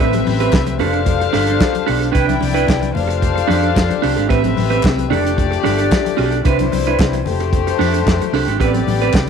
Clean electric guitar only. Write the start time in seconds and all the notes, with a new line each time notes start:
0.00 C4 G4 B4
0.15 muted clean electric guitar stroke
0.27 muted clean electric guitar stroke
0.40 C4 G4 B4
0.53 muted clean electric guitar stroke
0.67 muted clean electric guitar stroke
0.80 D4 G4 A4
0.93 muted clean electric guitar stroke
1.06 muted clean electric guitar stroke
1.20 muted clean electric guitar stroke
1.33 D4 G4 A4
1.47 D4 G4 A4
1.73 muted clean electric guitar stroke
1.86 D4 G4 A4
2.01 muted clean electric guitar stroke
2.12 D4 E4 B4
2.27 muted clean electric guitar stroke
2.40 muted clean electric guitar stroke
2.54 D4 E4 B4
2.67 muted clean electric guitar stroke
2.81 muted clean electric guitar stroke
3.08 muted clean electric guitar stroke
3.36 muted clean electric guitar stroke
3.48 D4 G4 A4
3.63 muted clean electric guitar stroke
3.75 muted clean electric guitar stroke
3.89 muted clean electric guitar stroke
4.02 D4 G4 A4
4.16 D4 G4 A4
4.29 C4 G4 B4
4.44 muted clean electric guitar stroke
4.57 muted clean electric guitar stroke
4.70 C4 G4 B4
4.83 muted clean electric guitar stroke
4.97 muted clean electric guitar stroke
5.10 D4 G4 A4
5.24 muted clean electric guitar stroke
5.37 muted clean electric guitar stroke
5.51 muted clean electric guitar stroke
5.63 D4 G4 A4
5.78 D4 G4 A4
6.05 muted clean electric guitar stroke
6.17 D4 G4 A4
6.32 muted clean electric guitar stroke
6.45 D4 E4 B4
6.60 muted clean electric guitar stroke
6.72 muted clean electric guitar stroke
6.87 D4 E4 B4
7.00 muted clean electric guitar stroke
7.14 muted clean electric guitar stroke
7.40 muted clean electric guitar stroke
7.67 muted clean electric guitar stroke
7.79 D4 G4 A4
7.94 muted clean electric guitar stroke
8.06 muted clean electric guitar stroke
8.22 muted clean electric guitar stroke
8.34 D4 G4 A4
8.48 D4 G4 A4
8.60 C4 G4 B4
8.73 muted clean electric guitar stroke
8.88 muted clean electric guitar stroke
9.02 C4 G4 B4
9.15 muted clean electric guitar stroke